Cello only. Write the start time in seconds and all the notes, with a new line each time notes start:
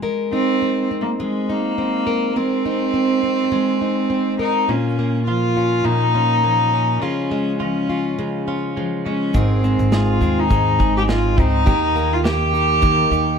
0.33 C4
1.01 A#3
1.21 G#3
1.51 A#3
2.36 C4
4.40 D#4
4.69 C#4
5.27 F4
5.85 D#4
7.01 C#4
7.60 C#4
9.07 C#4
9.36 C4
9.95 F4
10.40 D#4
10.97 G4
11.10 F4
11.39 D#4
12.13 F4
12.27 G4